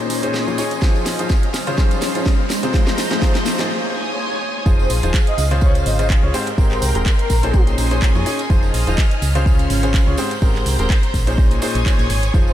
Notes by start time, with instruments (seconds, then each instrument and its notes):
Already playing: grand piano A#2 C#4 D#4 G#4 C5, string machine C#4 G#5 C6 D#6, riser
0.10 fm bass A#1, open hi-hat, tambourine
0.23 grand piano A#2 C#4 D#4 G#4 C5, closed hi-hat, tambourine
0.34 snare, tambourine
0.47 fm bass F2, grand piano A#2 C#4 D#4 G#4 C#5, tambourine
0.58 grand piano C#4 D#4 G#4 C#5, open hi-hat, tambourine
0.71 closed hi-hat, tambourine
0.82 fm bass F1, grand piano F3 D#4 F4 G#4 C5, string machine D#5 F6, kick, snare, tambourine
0.96 tambourine
1.06 fm bass A#1, snare, open hi-hat, tambourine
1.19 fm bass D#1, grand piano F3 D#4 F4 G#4 C5, closed hi-hat, tambourine
1.29 kick, snare, tambourine
1.43 closed hi-hat
1.54 fm bass C#2, string machine C#4 C6, snare, open hi-hat, tambourine
1.67 grand piano C#3 C#4 F4 G#4 C5, closed hi-hat, tambourine
1.78 grand piano F3 D#4 F4 G#4 C5, kick, snare, tambourine
1.91 closed hi-hat, tambourine
2.02 fm bass G#1, snare, open hi-hat, tambourine
2.15 grand piano F3 D#4 F4 G#4 C5, closed hi-hat, tambourine
2.26 kick, snare, tambourine
2.39 fm bass C#2
2.50 string machine C5 A#5 G6, snare, open hi-hat, tambourine
2.63 grand piano C3 C4 F4 G#4 C5, closed hi-hat, tambourine
2.74 grand piano F3 D#4 F4 G#4 C5, kick, snare, tambourine
2.87 snare, tambourine
2.98 fm bass C2, snare, open hi-hat, tambourine
3.11 fm bass D#1, grand piano F3 D#4 F4 G#4 C5, snare, closed hi-hat, tambourine
3.22 grand piano F3 D#4 F4 G#4 C5, kick, snare, tambourine
3.35 snare, closed hi-hat
3.46 fm bass A#1, snare, open hi-hat, tambourine
3.59 grand piano F3 D#4 F4 G#4 C5, snare, closed hi-hat, tambourine
3.70 string machine C#5 G#5 C6 D#6
4.66 fm bass F1, grand piano F3 D#4 F4 G#4 C5, string machine G#4 F5 D#6, kick, tambourine
4.79 soft synth lead C5, tambourine
4.90 fm bass A#1, open hi-hat, tambourine
5.03 fm bass D#1, grand piano F3 D#4 F4 G#4 C5, closed hi-hat, tambourine
5.14 kick, clap, tambourine
5.27 soft synth lead D#5, closed hi-hat
5.38 fm bass C#2, string machine C5, open hi-hat, tambourine
5.51 grand piano C#3 C#4 F4 G#4 C5, closed hi-hat, tambourine
5.61 soft synth lead C#5, kick, tambourine
5.75 closed hi-hat, tambourine
5.86 fm bass G#1, soft synth lead D#5, open hi-hat, tambourine
5.99 grand piano C#3 C#4 F4 G#4 C5, soft synth lead D#5, closed hi-hat, tambourine
6.10 kick, clap, tambourine
6.23 fm bass C#2, grand piano C#4 F4 G#4 C#5
6.34 grand piano G#2 C4 G4 G#4 C5, string machine A#4 G5 C6, open hi-hat, tambourine
6.47 closed hi-hat, tambourine
6.58 fm bass G#1, grand piano G#2 C4 G4 G#4 A#4, kick, tambourine
6.71 soft synth lead C5, clap, tambourine
6.82 fm bass C2, open hi-hat, tambourine
6.95 fm bass D#1, grand piano G#2 C4 G4 G#4 A#4, closed hi-hat, tambourine
7.06 kick, clap, tambourine
7.19 soft synth lead A#4, closed hi-hat
7.30 fm bass A#1, kick, open hi-hat, tambourine
7.43 grand piano A#2 C#4 D#4 G#4 C5, closed hi-hat, tambourine
7.54 string machine C#4 G#5 D#6, kick, tambourine
7.67 closed hi-hat, tambourine
7.78 fm bass A#1, open hi-hat, tambourine
7.91 grand piano A#2 C#4 D#4 G#4 C5, closed hi-hat, tambourine
8.02 kick, clap, tambourine
8.15 fm bass F2, grand piano A#2 C#4 D#4 G#4 C#5, tambourine
8.26 grand piano C#4 D#4 G#4 C#5, open hi-hat, tambourine
8.39 closed hi-hat, tambourine
8.50 fm bass F1, grand piano F3 D#4 F4 G#4 C5, string machine D#5 F6, kick, tambourine
8.63 tambourine
8.74 fm bass A#1, open hi-hat, tambourine
8.87 fm bass D#1, grand piano F3 D#4 F4 G#4 C5, closed hi-hat, tambourine
8.98 kick, clap, tambourine
9.11 closed hi-hat
9.22 fm bass C#2, string machine C#4 C6, open hi-hat, tambourine
9.35 grand piano C#3 C#4 F4 G#4 C5, closed hi-hat, tambourine
9.46 kick, tambourine
9.59 closed hi-hat, tambourine
9.70 fm bass G#1, open hi-hat, tambourine
9.83 grand piano C#3 C#4 F4 G#4 C5, closed hi-hat, tambourine
9.94 kick, clap, tambourine
10.07 fm bass C#2, grand piano C#4 F4 G#4 C#5
10.17 grand piano G#2 C4 G4 G#4 C5, string machine C5 A#5 G6, open hi-hat, tambourine
10.31 closed hi-hat, tambourine
10.42 fm bass G#1, grand piano G#2 C4 G4 G#4 A#4, kick, tambourine
10.55 clap, tambourine
10.66 fm bass C2, open hi-hat, tambourine
10.79 fm bass D#1, grand piano G#2 C4 G4 G#4 A#4, closed hi-hat, tambourine
10.90 kick, clap, tambourine
11.03 closed hi-hat
11.14 fm bass A#1, kick, open hi-hat, tambourine
11.27 grand piano A#2 C#4 D#4 G#4 C5, closed hi-hat, tambourine
11.38 string machine C#5 G#5 C6 D#6, kick, tambourine
11.51 closed hi-hat, tambourine
11.62 grand piano A#2 C#4 D#4 G#4 C5, open hi-hat, tambourine
11.75 fm bass A#1, closed hi-hat, tambourine
11.86 grand piano A#2 C#4 D#4 G#4 C5, kick, clap, tambourine
11.99 fm bass A#1, closed hi-hat, tambourine
12.10 fm bass G#1, open hi-hat, tambourine
12.23 closed hi-hat, tambourine
12.34 fm bass F1, grand piano F3 D#4 F4 G#4 C5, string machine G#4 F5, kick, tambourine
12.47 soft synth lead C5, tambourine